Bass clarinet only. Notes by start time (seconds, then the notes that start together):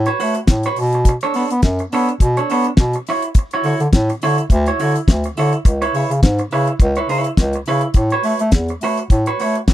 0.21 A3
0.48 A2
0.78 B2
1.35 B3
1.51 B3
1.63 F#2
1.92 B3
2.21 B2
2.50 B3
2.78 B2
3.64 D3
3.80 D3
3.93 A2
4.22 D3
4.50 D2
4.80 D3
5.08 D2
5.37 D3
5.65 C#2
5.94 C#3
6.10 C#3
6.23 G#2
6.52 C#3
6.80 C#2
7.09 C#3
7.38 C#2
7.66 C#3
7.95 A2
8.24 A3
8.40 A3
8.53 E2
8.82 A3
9.11 A2
9.40 A3
9.68 A2